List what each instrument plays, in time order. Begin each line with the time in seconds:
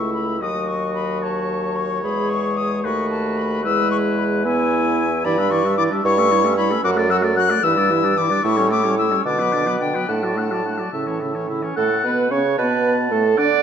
Already playing: bassoon C#2, french horn A3, clarinet E4, oboe E5, flute C#6
0.14 flute B5
0.41 bassoon D#2, french horn F#3, clarinet F#4, oboe D#5, flute D#6
0.68 flute C#6
0.95 flute B5
1.22 oboe C#5, flute A5
1.76 flute C#6
2.03 bassoon E2, french horn G#3, clarinet G#4, flute B5
2.30 flute C#6
2.57 flute D#6
2.84 bassoon D#2, french horn A3, clarinet F#4, oboe B4, flute C#6
3.10 flute A5
3.37 flute B5
3.64 bassoon E2, french horn G#3, clarinet E4, oboe B4, flute E6
3.91 flute C#6
4.18 flute B5
4.45 french horn B3, clarinet E4, oboe E5, flute G#5
5.25 bassoon G2, french horn E3, clarinet E4, oboe D5, flute B5
5.37 french horn G3, clarinet D4, oboe E5
5.50 french horn E3, clarinet E4, oboe D5, flute C#6
5.64 french horn G3, clarinet D4, oboe E5
5.77 french horn E3, clarinet E4, oboe D5, flute D6
5.90 french horn G3, clarinet D4, oboe E5
6.04 bassoon G2, french horn G3, clarinet E4, oboe C#5, flute C#6
6.18 french horn A3, clarinet C#4, oboe E5
6.31 french horn G3, clarinet E4, oboe C#5
6.44 french horn A3, clarinet C#4, oboe E5
6.57 french horn G3, clarinet E4, oboe C#5, flute B5
6.71 french horn A3, clarinet C#4, oboe E5
6.83 bassoon F#2, french horn F#3, clarinet F#4, oboe F#5, flute D6
6.96 french horn A3, clarinet A4, oboe D5
7.10 french horn F#3, clarinet F#4, oboe F#5, flute E6
7.23 french horn A3, clarinet A4, oboe D5
7.36 french horn F#3, clarinet F#4, oboe F#5, flute F#6
7.50 french horn A3, clarinet A4, oboe D5
7.63 bassoon G2, french horn E3, clarinet E4, oboe E5, flute E6
7.77 french horn G3, clarinet D4, oboe D5
7.90 french horn E3, clarinet E4, oboe E5
8.03 french horn G3, clarinet D4, oboe D5
8.17 french horn E3, clarinet E4, oboe E5, flute D6
8.30 french horn G3, clarinet D4, oboe D5
8.43 bassoon A2, french horn A3, clarinet E4, oboe E5, flute C#6
8.57 french horn G3, clarinet C#4, oboe C#5
8.70 french horn A3, clarinet E4, oboe E5, flute D6
8.84 french horn G3, clarinet C#4, oboe C#5
8.98 french horn A3, clarinet E4, oboe E5, flute E6
9.11 french horn G3, clarinet C#4, oboe C#5
9.25 bassoon B2, french horn D3, clarinet D4, oboe D5, flute D6
9.39 french horn F#3, clarinet B3, oboe B4
9.53 french horn D3, clarinet D4, oboe D5
9.67 french horn F#3, clarinet B3, oboe B4
9.80 french horn D3, clarinet D4, oboe D5, flute G5
9.94 french horn F#3, clarinet B3, oboe B4
10.08 bassoon A2, french horn A3, clarinet D4, oboe F#5, flute A5
10.23 french horn F#3, clarinet F#4, oboe D5
10.37 french horn A3, clarinet D4, oboe F#5
10.51 french horn F#3, clarinet F#4, oboe D5
10.65 french horn A3, clarinet D4, oboe F#5
10.78 french horn F#3, clarinet F#4, oboe D5
10.92 bassoon A2, french horn C#3, clarinet E4, oboe E5
11.07 french horn E3, clarinet C#4, oboe C#5
11.20 french horn C#3, clarinet E4, oboe E5
11.35 french horn E3, clarinet C#4, oboe C#5
11.49 french horn C#3, clarinet E4, oboe E5
11.62 french horn E3, clarinet C#4, oboe C#5
11.76 bassoon A2, french horn A3, clarinet A4, oboe F#5, flute A5
12.04 bassoon B2, french horn B3, clarinet B4, flute B5
12.31 bassoon C#3, french horn C#4, clarinet C#5, flute C#6
12.58 bassoon B2, french horn B3, clarinet B4, oboe A5, flute B5
13.11 bassoon A2, french horn A3, clarinet A4, flute A5
13.37 bassoon D3, french horn D4, clarinet D5, oboe F#5, flute D6